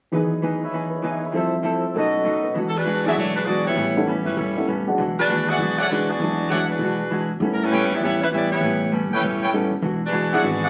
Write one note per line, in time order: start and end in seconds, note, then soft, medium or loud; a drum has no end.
0.12 1.34 E2 soft
0.12 1.35 D#3 soft
0.12 1.34 E3 soft
0.12 0.33 E3 soft
0.12 1.34 F#3 soft
0.12 0.33 B3 soft
0.12 0.34 D#4 soft
0.12 1.35 G#4 medium
0.12 0.62 B4 medium
0.12 1.35 D#5 medium
0.16 0.34 G#4 soft
0.42 0.63 E3 medium
0.42 0.63 B3 medium
0.42 0.64 D#4 medium
0.42 0.64 G#4 medium
0.63 1.35 B4 medium
0.63 1.35 C#5 soft
0.63 1.19 E5 medium
0.71 0.93 E3 soft
0.71 0.94 B3 soft
0.71 0.94 D#4 soft
0.71 0.95 G#4 soft
0.89 0.99 B4 soft
0.89 1.11 B5 soft
0.96 1.07 C#5 soft
1.02 1.23 E3 medium
1.02 1.24 B3 medium
1.02 1.24 D#4 medium
1.02 1.25 G#4 medium
1.02 1.17 D#5 soft
1.02 1.27 G#5 soft
1.12 1.24 E5 soft
1.19 1.33 E5 soft
1.19 1.29 G#5 soft
1.26 1.37 B5 soft
1.32 1.95 F2 soft
1.32 1.54 F3 soft
1.32 1.95 F3 soft
1.32 1.95 G3 soft
1.32 1.54 C4 soft
1.32 1.95 E4 soft
1.32 1.55 E4 soft
1.32 1.94 A4 soft
1.32 1.55 A4 medium
1.32 1.95 C5 medium
1.32 1.95 E5 medium
1.63 1.84 F3 medium
1.63 1.85 C4 medium
1.63 1.85 E4 medium
1.63 1.85 A4 medium
1.94 2.55 B2 soft
1.94 2.15 B2 soft
1.94 2.56 F#3 soft
1.94 2.16 F#3 soft
1.94 2.16 A3 soft
1.94 2.56 C#4 soft
1.94 2.56 D#4 soft
1.94 2.17 D#4 soft
1.94 2.57 F#4 medium
1.94 2.56 A4 medium
1.94 2.57 B4 medium
1.94 2.57 D#5 medium
2.24 2.45 B2 medium
2.24 2.46 F#3 medium
2.24 2.46 A3 medium
2.24 2.46 D#4 medium
2.24 2.49 C#5 soft
2.43 2.63 B4 soft
2.54 3.13 E2 medium
2.54 2.75 E3 medium
2.54 2.76 G#3 soft
2.54 2.77 D4 soft
2.54 2.77 F#4 medium
2.68 2.76 A4 medium
2.76 3.06 G#3 medium
2.76 3.06 D4 medium
2.76 3.05 F#4 medium
2.76 3.06 B4 medium
2.85 3.06 E3 medium
2.85 3.06 G#3 medium
2.85 3.07 D4 medium
2.85 3.07 F#4 medium
3.06 3.16 F#3 medium
3.06 3.16 G#3 soft
3.06 3.16 B3 medium
3.06 3.17 B3 medium
3.06 3.16 D4 soft
3.06 3.16 E4 medium
3.06 3.13 F#4 medium
3.06 3.15 F#4 medium
3.06 3.17 G#4 medium
3.06 3.13 G#4 medium
3.06 3.17 D5 medium
3.06 3.14 D5 medium
3.06 3.14 E5 medium
3.15 3.74 B1 medium
3.15 3.37 E3 soft
3.15 3.37 G#3 soft
3.15 3.35 A3 medium
3.15 3.33 D4 medium
3.15 3.33 F#4 medium
3.15 3.34 C#5 medium
3.19 3.38 D4 soft
3.19 3.38 F#4 soft
3.34 3.46 G#3 medium
3.34 3.46 D4 medium
3.34 3.44 F#4 medium
3.34 3.46 B4 medium
3.45 3.67 E3 medium
3.45 3.67 G#3 medium
3.45 3.64 B3 medium
3.45 3.65 F#4 medium
3.45 3.68 F#4 medium
3.45 3.65 G#4 medium
3.45 3.65 D5 medium
3.49 3.68 D4 medium
3.66 4.05 B3 medium
3.66 4.05 E4 medium
3.66 4.05 G4 medium
3.66 4.05 C#5 medium
3.75 4.22 A1 medium
3.75 3.97 A2 soft
3.75 3.97 G3 soft
3.75 3.98 B3 soft
3.75 3.98 C#4 soft
3.97 4.07 G3 medium
3.97 4.07 A3 medium
3.97 4.07 B3 medium
3.97 4.07 C#4 medium
3.97 4.07 E4 medium
4.07 4.27 A2 medium
4.07 4.28 G3 medium
4.07 4.28 B3 medium
4.07 4.28 C#4 medium
4.24 4.36 G1 medium
4.24 4.36 G3 medium
4.24 4.36 C#4 medium
4.24 4.36 E4 medium
4.24 4.36 B4 medium
4.36 4.95 E1 medium
4.36 4.57 A2 soft
4.36 4.68 G3 medium
4.36 4.58 G3 soft
4.36 4.58 B3 medium
4.36 4.68 C#4 medium
4.36 4.59 C#4 soft
4.36 4.68 E4 medium
4.36 4.68 A4 medium
4.57 4.67 G3 medium
4.57 4.67 A3 medium
4.57 4.67 B3 medium
4.57 4.67 C#4 medium
4.57 4.67 E4 medium
4.66 4.88 A2 medium
4.66 4.88 G3 medium
4.66 4.88 B3 medium
4.66 4.89 C#4 medium
4.87 4.98 F#3 medium
4.87 4.98 G#3 medium
4.87 4.98 B3 medium
4.87 4.98 D4 medium
4.87 4.98 F#4 medium
4.98 5.27 E1 medium
4.98 5.19 E3 medium
4.98 5.19 G#3 medium
4.98 5.20 D4 medium
4.98 5.20 F#4 medium
5.18 5.46 G#3 medium
5.18 5.46 D4 medium
5.18 5.47 F#4 medium
5.18 5.46 B4 loud
5.28 5.57 D#2 medium
5.28 5.49 E3 medium
5.28 5.50 G#3 medium
5.28 5.50 D4 medium
5.28 5.50 F#4 medium
5.48 5.79 B3 medium
5.48 5.76 F#4 medium
5.48 5.78 G#4 medium
5.48 5.57 G#4 medium
5.48 5.79 D5 loud
5.48 5.56 D5 medium
5.48 5.56 E5 medium
5.48 5.56 F#5 medium
5.59 6.17 B1 medium
5.59 5.79 E3 soft
5.59 5.80 G#3 soft
5.59 5.81 D4 soft
5.59 5.81 F#4 medium
5.77 5.89 A3 medium
5.77 5.89 D4 medium
5.77 5.89 F#4 medium
5.77 5.86 G#4 loud
5.77 5.89 C#5 medium
5.77 5.86 D5 medium
5.77 5.86 E5 medium
5.77 5.86 F#5 loud
5.90 6.10 E3 soft
5.90 6.07 F#3 soft
5.90 6.10 G#3 medium
5.90 6.09 G#3 medium
5.90 6.08 G#3 soft
5.90 6.08 B3 soft
5.90 6.09 D4 medium
5.90 6.08 D4 soft
5.90 6.11 D4 medium
5.90 6.08 E4 medium
5.90 6.09 F#4 medium
5.90 6.11 F#4 medium
5.90 6.09 B4 medium
6.08 6.50 B3 medium
6.08 6.48 F#4 medium
6.08 6.50 G#4 medium
6.08 6.50 D5 loud
6.19 6.77 E2 medium
6.19 6.40 E3 soft
6.19 7.05 F#3 medium
6.19 6.41 G#3 soft
6.19 7.05 G#3 soft
6.19 7.05 B3 soft
6.19 7.05 D4 medium
6.19 6.41 D4 medium
6.19 7.05 E4 medium
6.19 6.42 F#4 soft
6.48 6.71 E3 medium
6.48 6.71 G#3 medium
6.48 6.57 A3 medium
6.48 6.58 D4 medium
6.48 6.58 F#4 medium
6.48 6.64 G#4 medium
6.48 6.58 C#5 medium
6.48 6.63 D5 medium
6.48 6.63 E5 medium
6.48 6.63 F#5 medium
6.52 6.72 D4 medium
6.52 6.72 F#4 medium
6.68 7.26 G#3 medium
6.68 7.26 D4 medium
6.68 7.26 F#4 medium
6.68 7.25 B4 medium
6.79 7.37 B2 medium
6.79 7.01 E3 soft
6.79 7.01 G#3 soft
6.83 7.02 D4 soft
6.83 7.03 F#4 soft
7.10 7.31 E3 medium
7.10 7.31 G#3 medium
7.10 7.32 D4 medium
7.10 7.32 F#4 medium
7.40 7.86 A2 medium
7.40 7.61 A2 soft
7.40 8.25 G3 medium
7.40 7.62 G3 soft
7.40 8.25 A3 medium
7.40 8.25 B3 soft
7.40 7.62 B3 soft
7.40 8.26 C#4 soft
7.40 7.63 C#4 medium
7.40 8.26 E4 medium
7.53 7.61 A#4 medium
7.63 7.92 G3 medium
7.63 7.92 C#4 medium
7.63 7.92 E4 medium
7.63 7.92 B4 medium
7.71 7.91 A2 medium
7.71 7.92 G3 medium
7.71 7.92 B3 medium
7.71 7.93 C#4 medium
7.71 7.84 A4 medium
7.71 7.84 B4 medium
7.71 7.84 C#5 medium
7.71 7.84 G5 medium
7.90 8.03 B3 medium
7.90 8.03 E4 medium
7.90 8.02 G4 medium
7.90 8.04 D5 medium
7.90 muted upright bass stroke soft
8.00 8.59 E2 medium
8.00 8.22 A2 soft
8.00 8.22 G3 soft
8.00 8.23 B3 medium
8.00 8.21 B3 medium
8.00 8.21 E4 medium
8.00 8.20 G4 medium
8.00 8.21 C#5 medium
8.05 8.24 C#4 soft
8.21 8.26 G3 medium
8.21 8.26 C#4 medium
8.21 8.27 E4 medium
8.21 8.27 B4 medium
8.31 8.52 A2 medium
8.31 8.52 G3 medium
8.31 8.52 B3 medium
8.31 8.50 B3 medium
8.31 8.53 C#4 medium
8.31 8.50 E4 medium
8.31 8.51 G4 medium
8.31 8.51 D5 medium
8.52 8.90 B3 medium
8.52 8.90 E4 medium
8.52 8.90 G4 medium
8.52 8.90 C#5 loud
8.61 9.07 A1 medium
8.61 8.82 A2 soft
8.61 8.83 G3 soft
8.61 8.83 B3 soft
8.65 8.84 C#4 soft
8.92 9.12 A2 medium
8.92 9.13 G3 medium
8.92 9.13 B3 medium
8.92 9.14 C#4 medium
9.11 9.20 A#1 medium
9.11 9.23 G3 medium
9.11 9.24 C#4 medium
9.11 9.24 E4 medium
9.11 9.20 A4 medium
9.11 9.20 B4 medium
9.11 9.23 B4 medium
9.11 9.20 C#5 medium
9.11 9.20 G5 loud
9.21 9.68 E1 medium
9.21 9.43 A2 soft
9.21 9.43 G3 soft
9.21 9.44 B3 soft
9.26 9.55 G3 medium
9.26 9.45 C#4 soft
9.26 9.55 C#4 medium
9.26 9.55 E4 medium
9.26 9.55 A4 medium
9.42 9.50 A4 medium
9.42 9.50 B4 medium
9.42 9.50 C#5 medium
9.42 9.50 G5 loud
9.53 9.74 A2 medium
9.53 9.70 G3 medium
9.53 9.74 G3 medium
9.53 9.70 A3 medium
9.53 9.70 B3 medium
9.53 9.74 B3 medium
9.53 9.71 C#4 medium
9.53 9.74 C#4 medium
9.53 9.71 E4 medium
9.71 muted upright bass stroke soft
9.82 10.40 E1 medium
9.82 10.03 E3 soft
9.82 10.03 G#3 medium
9.82 10.04 D4 medium
9.82 10.05 F#4 medium
10.05 10.32 G#3 medium
10.05 10.32 D4 medium
10.05 10.32 F#4 medium
10.05 10.32 B4 medium
10.12 10.33 E3 medium
10.12 10.33 G#3 medium
10.12 10.34 D4 medium
10.12 10.34 F#4 medium
10.32 10.43 F#3 medium
10.32 10.43 G#3 medium
10.32 10.43 B3 medium
10.32 10.70 B3 medium
10.32 10.43 D4 medium
10.32 10.43 E4 medium
10.32 10.70 F#4 medium
10.32 10.40 G#4 medium
10.32 10.70 G#4 medium
10.32 10.40 D5 medium
10.32 10.70 D5 medium
10.32 10.40 E5 medium
10.32 10.41 F#5 medium
10.42 10.70 G#1 medium
10.42 10.63 E3 soft
10.42 10.64 G#3 soft
10.42 10.64 D4 medium
10.42 10.64 F#4 medium
10.64 10.70 G#4 medium
10.64 10.70 D5 medium
10.64 10.70 E5 medium
10.64 10.70 F#5 loud